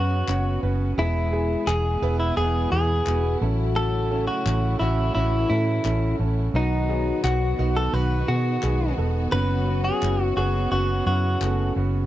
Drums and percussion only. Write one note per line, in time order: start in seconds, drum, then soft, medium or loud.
0.28 clap medium
1.68 clap medium
3.06 clap medium
4.46 clap medium
5.85 clap medium
7.24 clap medium
8.63 clap medium
10.03 clap medium
11.41 clap medium